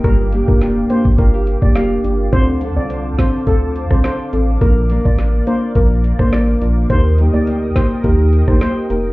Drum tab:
HH |x-x-x-x-x-x-x-x-|x-x-x-x-x-x-x-x-|x-x-x-x-x-x-x-x-|x-x-x-x-x-x-x-x-|
SD |----o-------o---|------o----ro---|----o------ro---|------o----ro---|
BD |o--o---oo--o----|o-----o-o--o----|o--o----o--o----|o-----o-o--o----|